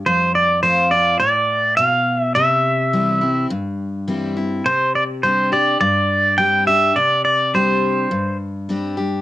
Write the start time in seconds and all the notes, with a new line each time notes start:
0.06 F2 C5
0.35 D5
0.63 F3 A3 C4 F4 C5
0.91 C4 F4 D5
1.20 A2 D5
1.77 B2 F5
2.20 E5
2.35 C3 E5
2.93 E3 G3 C4 E4
3.21 C4 E4
3.50 G2
4.08 E3 G3 C4 E4
4.37 C4 E4
4.66 C3 C5
4.95 D5
5.23 G3 C4 D4 G4 C5
5.52 D4 G4 D5
5.81 G2 D5
6.38 G3 C4 D4 G4 G5
6.67 D4 G4 E5
6.96 C3 D5
7.25 D5
7.54 G3 C4 D4 G4 C5
8.11 G2
8.69 G3 C4 D4 G4
8.97 D4 G4